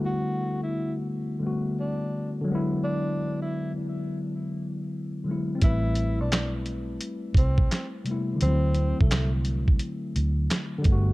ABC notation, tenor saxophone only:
X:1
M:4/4
L:1/16
Q:"Swing 16ths" 1/4=86
K:Ador
V:1 name="Tenor saxophone"
F3 E2 z4 z D3 z3 | D3 E2 z8 z3 | E3 D2 z4 z C3 z3 | C3 A,2 z8 z3 |]